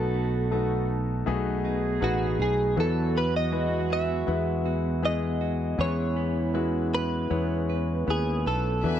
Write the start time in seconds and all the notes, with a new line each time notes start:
Already playing: B1 B2 F#3 A3 B3 D#4 F#4 A4 B4
0.14 B3
0.51 A3 B3 D#4 F#4 A4
1.26 B1 A3 B3 D#4 F#4 G#4
1.65 D#4
2.01 A1 A3 B3 D#4 F#4 B4
2.39 B1 D#4 G#4
2.76 E2 E3 F#3 B3 E4 F#4 A4 B4
3.15 B3 B4
3.36 D#5
3.51 G#3 B3 E4 F#4 B4
3.90 G#4 E5
4.27 E2 G#3 B3 E4 F#4 B4
4.66 F#4
5.02 G#3 B3 E4 F#4 G#4 D#5
5.41 F#4
5.78 E2 E3 G#3 B3 C#4 E4 G#4 B4 C#5
6.17 B3
6.54 G#3 B3 C#4 E4 F#4 B4
6.95 B4
7.30 E2 G#3 B3 C#4 E4 C#5
7.70 B4
8.07 D#2 B3 C#4 E4 G#4 B4
8.46 B1 A4 B4
8.83 E2 E3 B3 D4 E4 F#4 B4 E5 G#5